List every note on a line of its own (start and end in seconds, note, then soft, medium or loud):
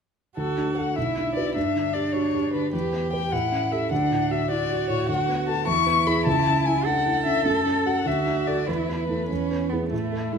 0.37 0.95 D2 soft
0.37 0.93 F#4 soft
0.37 0.74 A4 soft
0.58 0.89 D4 soft
0.77 0.95 F#4 soft
0.77 0.95 A4 soft
0.77 0.97 F#5 soft
0.95 1.54 B1 soft
0.95 1.57 E4 soft
0.95 1.34 E5 soft
1.18 1.48 D4 soft
1.35 1.54 F#4 soft
1.35 1.54 B4 soft
1.35 1.54 D5 medium
1.55 2.70 G2 soft
1.55 2.73 D4 soft
1.55 1.95 E5 medium
1.75 2.07 D3 soft
1.93 2.26 G4 soft
1.93 2.14 D5 soft
2.13 2.34 F#4 soft
2.13 2.52 C#5 soft
2.35 2.66 G4 soft
2.53 2.73 D3 soft
2.53 2.72 B4 soft
2.72 3.30 E2 soft
2.72 3.34 G4 soft
2.72 3.11 B4 soft
2.93 3.25 B3 soft
3.13 3.30 G4 soft
3.13 3.31 B4 soft
3.13 3.33 G5 medium
3.32 3.89 A2 soft
3.32 3.91 E4 soft
3.32 3.73 F#5 medium
3.52 3.83 C#4 soft
3.71 3.89 G4 soft
3.71 3.90 A4 soft
3.71 3.91 E5 medium
3.91 5.05 D2 soft
3.91 4.50 D4 soft
3.91 4.33 F#5 medium
4.11 4.42 A2 soft
4.31 4.62 F#4 soft
4.31 4.50 E5 medium
4.50 4.70 E4 soft
4.50 5.65 F#4 soft
4.50 4.89 D5 medium
4.70 5.01 F#4 soft
4.89 5.09 A2 soft
4.89 5.08 C#5 medium
5.09 5.65 D2 soft
5.09 5.47 F#5 medium
5.29 5.59 B3 soft
5.47 5.65 F#4 soft
5.47 5.65 A4 soft
5.47 5.67 A5 medium
5.67 6.24 E2 soft
5.67 6.86 E4 medium
5.67 6.08 C#6 medium
5.87 6.18 B3 soft
6.07 6.24 E4 soft
6.07 6.24 G#4 soft
6.07 6.25 B5 medium
6.26 7.42 C#2 soft
6.26 6.67 A5 medium
6.47 6.78 C#3 soft
6.66 6.98 E4 soft
6.66 6.86 G#5 medium
6.85 7.06 D4 soft
6.85 8.05 A4 medium
6.85 7.25 F#5 medium
7.06 7.38 E4 soft
7.25 7.46 C#3 soft
7.25 7.45 E5 medium
7.45 8.04 F#2 soft
7.45 7.88 A4 medium
7.66 7.98 C#4 soft
7.86 8.04 F#4 soft
7.86 8.04 A4 soft
7.86 8.08 F#5 medium
8.05 8.66 D2 soft
8.05 8.67 F#4 medium
8.05 8.48 E5 medium
8.27 8.60 D4 soft
8.47 8.66 F#4 soft
8.47 8.66 A4 soft
8.47 8.69 D5 medium
8.66 9.28 E2 soft
8.66 9.08 E4 soft
8.66 9.72 B4 medium
8.89 9.22 B3 soft
9.09 9.28 A3 soft
9.09 9.28 E4 soft
9.09 9.28 A4 soft
9.29 9.91 E2 soft
9.29 9.71 C#4 medium
9.51 9.84 B3 soft
9.69 9.89 B3 soft
9.69 9.91 E4 soft
9.69 9.91 G#4 soft
9.89 10.38 A2 soft
9.89 10.34 A3 soft
9.89 10.38 E4 soft
10.12 10.38 A4 soft
10.32 10.38 G#3 soft
10.32 10.38 E4 soft